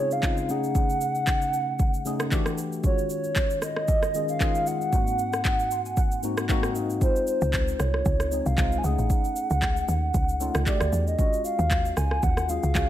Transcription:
Already playing: C#3 G#3 C4 F4 C#5
0.00 D#4 G#4
0.11 F5, shaker
0.23 C#3 G#3 C4 D#4 F4, kick, clap, shaker
0.37 shaker
0.49 C#3 A3 C#4 D#4 G#4 F#5, shaker
0.64 shaker
0.75 kick, shaker
0.90 shaker
1.01 shaker
1.15 shaker
1.27 kick, clap, shaker
1.42 shaker
1.54 shaker
1.79 kick, shaker
1.94 shaker
2.05 C#3 A3 C#4 D#4 G#4, shaker
2.20 cross-stick, shaker
2.31 E3 A3 D4 F#4 G4, kick, clap, shaker
2.46 cross-stick, shaker
2.58 shaker
2.72 shaker
2.83 D#3 G#3 C#4 F4 F#4 C#5, kick, shaker
2.98 shaker
3.10 C#5, shaker
3.24 shaker
3.35 kick, clap, shaker
3.50 shaker
3.62 D#5, cross-stick, shaker
3.76 cross-stick
3.88 kick, shaker
4.03 cross-stick, shaker
4.14 D#3 G#3 C#4 F4 G#4, shaker
4.29 F5, shaker
4.40 D#3 G#3 C#4 F4 G#4, kick, clap, shaker
4.55 shaker
4.67 F#5, shaker
4.81 shaker
4.92 G#2 A#3 C4 D#4 F#4, kick, shaker
5.07 shaker
5.19 shaker
5.33 cross-stick, shaker
5.45 kick, clap, shaker
5.59 shaker
5.71 C6, shaker
5.85 G#5, shaker
5.97 F#5, kick, shaker
6.12 shaker
6.23 G#2 A#3 C4 D#4 F#4, shaker
6.37 cross-stick, shaker
6.49 G#2 A#3 C4 D#4 F#4 F5, kick, clap, shaker
6.63 cross-stick, shaker
6.75 D#5, shaker
6.90 shaker
7.01 G#3 C4 D#4 F4 C5, kick, shaker
7.16 shaker
7.27 C5, shaker
7.41 C#2, shaker
7.53 kick, clap, shaker
7.68 shaker
7.80 C2 C#5, cross-stick, shaker
7.94 cross-stick
8.05 C#2, kick, shaker
8.20 cross-stick, shaker
8.32 G#3 C4 D#4 G#4, shaker
8.46 C2 F5, shaker
8.58 C2 G#3 C4 D#4 F4, kick, clap, shaker
8.72 shaker
8.78 G#5
8.84 C#2 A3 C#4 D#4 G#4 F#5, shaker
8.99 A1, shaker
9.10 kick, shaker
9.24 shaker
9.36 shaker
9.50 C#2, shaker
9.62 kick, clap, shaker
9.77 shaker
9.88 D#2, shaker
10.14 C#2, kick, shaker
10.29 shaker
10.40 A3 C#4 D#4 F4, shaker
10.55 C#2, cross-stick, shaker
10.66 A3 D4 F#4 G4 D5, kick, clap, shaker
10.80 D2, cross-stick, shaker
10.92 E2, shaker
11.07 D#5, shaker
11.18 G#3 C#4 F4 F#4, kick, shaker
11.33 shaker
11.45 F5, shaker
11.59 D#2, shaker
11.70 kick, clap, shaker
11.85 shaker
11.97 C#2 G#5, cross-stick, shaker
12.11 cross-stick
12.23 D#2 F#5, kick, shaker
12.37 cross-stick, shaker
12.49 G#3 C#4 F4 G#4 F5, shaker
12.63 C#2, shaker
12.75 C#2 G#3 C#4 F4 F#4, kick, clap, shaker

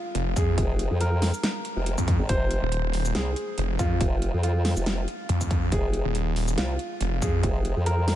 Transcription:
Already playing: F4
0.15 F1, closed hi-hat
0.36 F2 G#4, kick, closed hi-hat, shaker
0.58 F1, kick, closed hi-hat
0.79 closed hi-hat
0.91 F2
1.01 A#4, closed hi-hat
1.22 snare, open hi-hat
1.34 shaker
1.43 snare, closed hi-hat
1.65 closed hi-hat
1.76 F1
1.86 closed hi-hat
1.98 F2, kick, shaker
2.08 kick, closed hi-hat
2.19 G#1
2.29 F1 C5, kick, closed hi-hat
2.51 closed hi-hat
2.62 D#1
2.72 closed hi-hat
2.93 D#1, open hi-hat
3.05 shaker
3.15 C2 G#4, snare, closed hi-hat
3.36 closed hi-hat
3.58 F1, closed hi-hat
3.79 F2 F4, kick, closed hi-hat, shaker
4.01 F1, kick, closed hi-hat
4.22 closed hi-hat
4.34 F2
4.43 F4, closed hi-hat
4.65 snare, open hi-hat
4.77 F1, shaker
4.86 snare, closed hi-hat
5.08 closed hi-hat
5.29 F2, closed hi-hat
5.41 kick, shaker
5.51 kick, closed hi-hat
5.72 F1 G#4, kick, closed hi-hat
5.93 closed hi-hat
6.05 D#1
6.15 closed hi-hat
6.36 D#1, open hi-hat
6.48 shaker
6.58 C2 F4, snare, closed hi-hat
6.79 closed hi-hat
7.01 F1, closed hi-hat
7.22 F2 G#4, kick, closed hi-hat, shaker
7.43 F1, kick, closed hi-hat
7.65 closed hi-hat
7.76 F2
7.86 A#4, closed hi-hat
8.08 snare, open hi-hat

